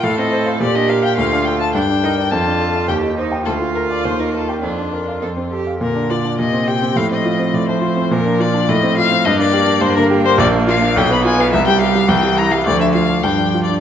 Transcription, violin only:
\new Staff \with { instrumentName = "Violin" } { \time 2/4 \key bes \major \tempo 4 = 105 f''16 ees''8 c''16 d''16 ees''16 f''16 g''16 | f''8 g''16 a''16 g''4 | a''4 g''8 r8 | a'8 bes'16 d''16 c''16 bes'16 a'16 g'16 |
f'4. r8 | bes'8 d''8 ees''8 g''8 | f''16 ees''8. d''16 c''8. | bes'8 d''8 ees''8 f''8 |
ees''16 d''8. c''16 bes'8 c''16 | \key c \mixolydian d''8 f''8 g''16 b''16 aes''16 f''16 | e''16 g''16 f''8 g''8 bes''16 f''16 | d''16 e''16 f''8 \tuplet 3/2 { g''4 d''8 } | }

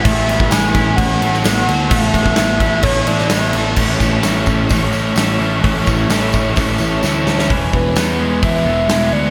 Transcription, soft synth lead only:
\new Staff \with { instrumentName = "Soft synth lead" } { \time 4/4 \key a \major \tempo 4 = 129 e''4 gis''4 fis''2 | e''2 cis''8 d''8 e''8. r16 | r1 | r1 |
r8 b'8 b'4 e''4. d''8 | }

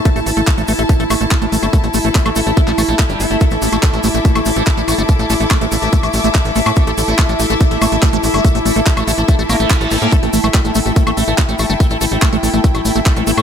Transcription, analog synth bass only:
\new Staff \with { instrumentName = "Analog synth bass" } { \clef bass \time 4/4 \tempo 4 = 143 r16 a,,16 a,,16 a,,16 r16 a,,16 a,,16 a,,16 r16 a,,16 a,,16 a,,16 r16 a,,16 a,,16 g,,16 | r16 a,,16 a,,16 a,,16 r16 a,,16 a,,16 a,,16 r16 a,,16 a,,16 bes,,16 r16 g,,16 g,,16 g,,16 | r16 a,,16 a,,16 a,,16 r16 a,,16 a,,16 a,,16 r16 a,,16 a,,16 a,,16 r16 a,,16 a,,16 g,,16 | r16 a,,16 a,,16 a,,16 r16 a,,16 a,,16 a,,16 r16 a,,16 a,,16 a,,16 r16 a,,16 a,,16 a,16 |
r16 a,,16 a,,16 a,,16 r16 a,,16 a,,16 a,,16 r16 a,,16 a,,16 a,,16 r16 a,,16 a,,16 g,,16 | r16 a,,16 a,,16 a,,16 r16 a,,16 a,,16 a,,16 r16 a,,16 a,,16 a,,16 r16 a,,16 a,,16 a,16 | r16 a,,16 a,,16 a,,16 r16 a,,16 a,,16 a,,16 r16 a,,16 a,,16 a,,16 r16 a,,16 a,,16 g,,16 | r16 a,,16 a,,16 a,,16 r16 a,,16 a,,16 a,,16 r16 a,,16 a,,16 a,,16 r16 a,,16 a,,16 a,16 | }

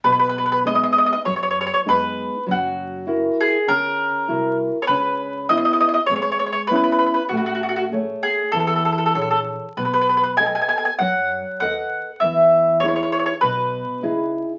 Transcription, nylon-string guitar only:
\new Staff \with { instrumentName = "Nylon-string guitar" } { \time 4/4 \key b \major \tempo 4 = 99 b,4 <gis b dis'>4 fis4 <gis b dis'>4 | fis4 <e' fis' ais'>4 cis4 <e' fis' ais'>4 | cis4 <b cis' e'>4 gis4 <b cis' e'>4 | a4 <a gis' cis''>4 e4 <gis' a' cis''>4 |
b4 <a' b' dis''>4 fis4 <a' b' dis''>4 | e4 <dis' e' gis'>4 b,4 <dis' e' gis'>4 | }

